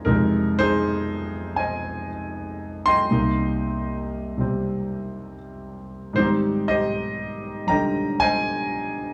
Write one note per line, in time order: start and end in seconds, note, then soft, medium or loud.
0.00 0.06 C3 soft
0.00 3.12 F3 soft
0.00 0.07 D#4 medium
0.00 3.12 F4 soft
0.00 0.60 G#4 soft
0.00 0.05 A#4 medium
0.00 0.21 C5 soft
0.00 3.12 D5 soft
0.05 3.10 F2 medium
0.05 3.09 C3 soft
0.05 3.11 G#3 soft
0.05 0.58 D#4 medium
0.05 0.54 A#4 medium
0.59 2.07 D#4 medium
0.59 2.07 G#4 medium
0.59 1.30 C5 loud
1.56 3.07 C5 soft
1.56 2.86 D#5 medium
1.56 2.89 G#5 medium
2.86 5.35 D#5 medium
2.86 5.35 G5 medium
2.86 5.34 C6 loud
3.10 6.15 C2 soft
3.10 4.36 C3 soft
3.10 6.16 A#3 soft
3.10 6.16 D#4 medium
4.38 6.14 C3 soft
4.38 6.15 G3 soft
4.38 6.16 C4 medium
6.13 9.13 G#2 medium
6.13 9.13 D#3 soft
6.13 7.65 G3 soft
6.13 6.27 C5 medium
6.18 9.13 C4 medium
6.18 7.65 D#4 medium
6.18 6.68 G4 medium
6.68 8.17 G4 medium
6.68 8.17 C5 medium
6.68 7.68 D#5 medium
7.67 9.13 D3 soft
7.67 9.13 G3 soft
7.67 8.21 D#5 medium
7.67 9.13 G5 medium
7.67 7.80 A#5 medium
8.20 9.13 C5 medium
8.20 9.13 D#5 medium
8.20 9.13 G#5 loud